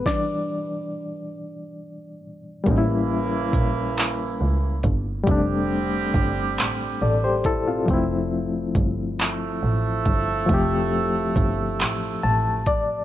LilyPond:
<<
  \new Staff \with { instrumentName = "Reed electric piano" } { \time 6/8 \key f \major \tempo 4. = 46 d''2~ d''8 r8 | r2. | r2 <a' d''>16 <g' c''>16 <e' a'>16 <c' f'>16~ | <c' f'>16 r2 r8. |
r2 a''8 d''8 | }
  \new Staff \with { instrumentName = "Reed electric piano" } { \time 6/8 \key f \major <e g d'>4. r4. | <g bes cis' ees' e'>2. | <g a c' d'>2. | <f a c' e'>2. |
<f a c' g'>2. | }
  \new Staff \with { instrumentName = "Horn section" } { \time 6/8 \key f \major r2. | <cis e bes e'>2~ <cis e bes e'>8 r8 | <d g c' g'>2~ <d g c' g'>8 r8 | r4. <f a e' a'>4.~ |
<f a e' a'>2~ <f a e' a'>8 r8 | }
  \new Staff \with { instrumentName = "Double bass" } { \clef bass \time 6/8 \key f \major r2. | a,,4 bes,,4 cis,8 g,,8 | f,,4 g,,8 a,,8 a,,4 | f,,4 g,,4 a,,8 g,,8 |
f,,4 g,,8 a,,8 a,,4 | }
  \new DrumStaff \with { instrumentName = "Drums" } \drummode { \time 6/8 <bd sn>4. r4. | <hh bd>4 <hh bd>8 <hc hh>4 <hh bd>8 | <hh bd>4 <hh bd>8 <hc hh>4 <hh bd>8 | <hh bd>4 <hh bd>8 <hc hh>4 <hh bd>8 |
<hh bd>4 <hh bd>8 <hc hh>4 <hh bd>8 | }
>>